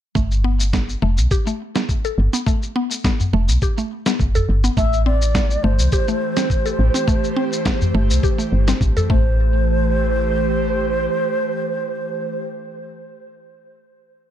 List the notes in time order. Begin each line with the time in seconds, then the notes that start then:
0.15 G1 A3, kick, shaker
0.32 shaker
0.44 B3
0.60 shaker
0.73 B3, kick, snare, shaker
0.89 shaker
1.02 F1 A3
1.18 B1, shaker
1.31 G4, kick, shaker
1.47 A3, shaker
1.76 B3, snare, shaker
1.89 kick, shaker
2.05 A4, shaker
2.18 G1
2.33 B3, shaker
2.46 A3, kick, shaker
2.62 shaker
2.76 B3
2.91 shaker
3.04 B3, kick, snare, shaker
3.20 udu, shaker
3.33 F1 A3
3.48 B1, shaker
3.62 G4, kick, shaker
3.78 A3, shaker
4.06 B3, snare, shaker
4.19 G1, kick, shaker
4.35 A4, udu, shaker
4.49 G1
4.64 B3, shaker
4.77 A1 E3 A3 E5, kick, shaker
4.93 shaker
5.06 C4 D5
5.22 A3, shaker
5.35 B3, kick, snare, shaker
5.51 shaker
5.63 G1 A3 C5
5.79 C2, shaker
5.88 G4
5.92 G4, kick, shaker
6.08 A3, shaker
6.37 C4, snare, shaker
6.50 kick, shaker
6.65 A4 C5, shaker
6.79 A1
6.94 C4, shaker
7.08 A3, kick, shaker
7.24 shaker
7.36 C4
7.53 shaker
7.65 B3, kick, snare, shaker
7.82 udu, shaker
7.94 G1 A3
8.10 C2, shaker
8.23 G4, kick, shaker
8.38 A3, shaker
8.52 G1
8.68 C4, snare, shaker
8.81 A1, kick, shaker
8.97 A4, udu, shaker
9.09 A1 E3 A3 C5, kick
9.19 A3
9.57 G4
9.65 C5